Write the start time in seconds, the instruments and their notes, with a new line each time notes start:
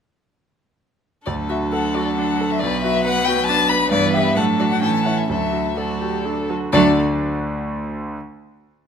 1.26 grand piano D2, cello F#3, viola D4, violin A4 D5
1.49 grand piano F#4, violin E5
1.73 grand piano A4, violin F#5
1.95 grand piano F#4, violin D5
2.16 grand piano D4, violin F#5
2.41 grand piano A4
2.51 violin E5
2.59 grand piano B1, viola B3, violin B4 D5
2.81 grand piano F#4, violin E5
3.04 grand piano B4, violin F#5
3.25 grand piano F#4, violin G5
3.46 grand piano D4, violin A5
3.69 grand piano B4, violin B5
3.91 grand piano G2, cello E3, viola B3, violin B4 D5
4.14 grand piano E4 G4, violin E5
4.36 grand piano A2, cello F#3, viola D4, violin A4 F#5
4.59 grand piano D4 F#4, violin D5
4.70 violin F#5
4.81 grand piano A2, cello E3, viola C#4, violin A4 G5
4.95 violin A5
5.04 grand piano C#4 E4, violin F#5
5.18 violin E5
5.28 grand piano D2, cello F#3, viola D4, violin A4 E5
5.52 grand piano F#4
5.77 cello F#3, viola F#4, grand piano A4, violin A4 D5
6.01 grand piano F#4, viola G4
6.25 grand piano D4, viola A4
6.50 viola F#4, grand piano A4
6.73 grand piano D2 D3 A3 D4 F#4 D5, cello F#3, viola D4, violin A4 D5